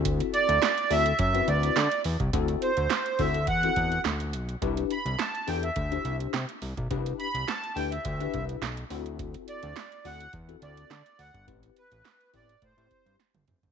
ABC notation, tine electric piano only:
X:1
M:4/4
L:1/16
Q:1/4=105
K:Ddor
V:1 name="Tine electric piano"
[CE^FA]4 z2 [CEFA] z2 [CEFB]3 z4 | [CE^FA]2 z4 [CEFA] z2 [CEFA]3 z4 | [DEGB]2 z4 [DEGA] z2 [DEGc]3 z4 | [DEGB]2 z4 [DEGB] z2 [DEGB]3 z2 [CE^FA]2- |
[CE^FA]4 z2 [CEFA] z2 [CEFA]3 z4 | [CEGB]2 z4 [CEGB] z2 [CEGc]3 z4 |]